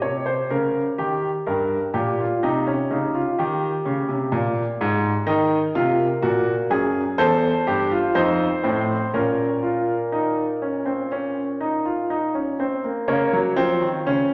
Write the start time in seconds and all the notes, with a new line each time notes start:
Already playing: G4
0.02 C3 C#5
0.26 C5
0.50 C#3 A#4
0.98 D#3 G4
1.46 G2 A#4
1.94 A#2 G4
2.20 F4
2.43 C3 D#4 G4
2.67 C#4
2.90 C#3 D#4
3.14 F4
3.38 D#3 G4
3.85 C#3
4.08 C3
4.32 A#2
4.81 G#2
5.27 D#3 D#4 A#4
5.75 C3 F4
6.22 A#2 F#4
6.70 F#2 G#4
7.18 E2 A4 C5
7.67 G2 G4
7.91 F4
8.15 F2 D#4 C5
8.63 A2 C4
9.14 A#2 C#4 A#4
9.63 F4
10.12 D#4
10.62 C#4
10.85 C4
11.12 C#4
11.61 D#4
11.85 F4
12.10 D#4
12.35 C#4
12.60 C4
12.84 A#3
13.08 C#3 A#3 C#5
13.33 F#3
13.56 F3 C4
13.81 D#3
14.07 C#3 C#4